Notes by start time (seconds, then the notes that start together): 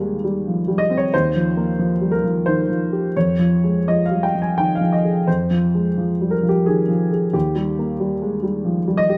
Already playing: D#2 G3 A#3 G4
0.01 G#3
0.24 G3
0.48 F3
0.68 G3
0.78 D#5
0.90 C4
0.97 C#5
1.14 D#2 C5
1.36 F3
1.57 A#3
1.79 F3
2.01 G3
2.12 A#4
2.23 F3
2.46 D#3 C5
2.70 F3
2.93 G4
3.17 F2 C#5
3.39 F3
3.64 G#3
3.88 F3 D#5
4.06 F5
4.11 G3
4.23 G5
4.35 F3
4.42 G#5
4.58 D#3 G5
4.75 F5
4.81 F3
4.92 D#5
5.05 G#4
5.27 F2 C5
5.51 F3
5.75 G#3
5.98 F3
6.21 G3
6.31 A#4
6.43 F3
6.49 G4
6.66 D#3 G#4
6.89 F3
7.12 G#4
7.33 D#2 G4
7.55 G3
7.79 A#3
8.00 G3
8.22 G#3
8.43 G3
8.65 F3
8.88 G3
8.97 D#5
9.09 G4